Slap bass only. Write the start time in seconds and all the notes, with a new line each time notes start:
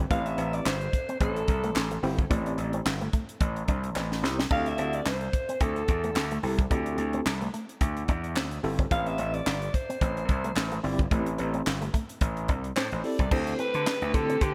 0.11 A1
0.38 A1
0.65 G1
1.21 A1
1.48 C2
1.75 A1
2.03 G1
2.31 A1
2.58 A1
2.85 G1
3.41 A1
3.68 C2
3.95 A1
4.23 C2
4.51 D2
4.78 D2
5.06 C2
5.61 D2
5.89 E2
6.16 D2
6.43 C2
6.71 D2
6.98 D2
7.25 C2
7.81 D2
8.09 E2
8.36 D2
8.63 G1
8.91 A1
9.18 A1
9.46 G1
10.01 A1
10.29 C2
10.56 A1
10.84 G1
11.11 A1
11.39 A1
11.66 G1
12.21 A1
12.49 C2
12.76 A2
12.92 A1
13.19 C2
13.31 D2
13.75 D3
14.02 D2
14.14 D3
14.41 D3